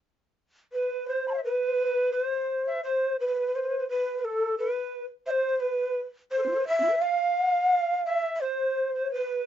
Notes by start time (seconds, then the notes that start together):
0.72 B4
1.07 C5
1.28 A5 B5
1.34 E5 F5
1.44 B4
2.12 B4 C5
2.24 C5
2.67 E5
2.83 C5
3.19 B4
3.27 B4
3.35 B4
3.47 B4
3.55 B4 C5
3.63 B4
3.69 B4
3.79 B4
3.89 B4
4.18 B4
4.24 A4
4.58 B4
5.26 C5 E5
5.31 C5
5.60 B4
6.31 C5
6.38 A4
6.43 C4 E4 B4
6.50 F4
6.55 A4 B4
6.63 C5 E5
6.80 C4 E4
6.85 F4 A4
6.91 B4
6.97 E5
7.01 F5
8.06 E5
8.35 E5
8.41 C5
8.94 C5
9.11 B4